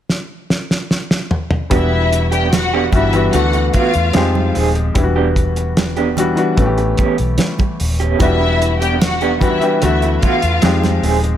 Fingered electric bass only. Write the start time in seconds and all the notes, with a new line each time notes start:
1.72 E1
2.93 G1
3.34 D2
3.95 E2
4.15 F2
4.56 D#1
4.96 E1
6.58 A1
7.20 B1
7.81 D#1
8.20 E1
9.83 D2
10.43 E2
10.63 F2
11.03 D#1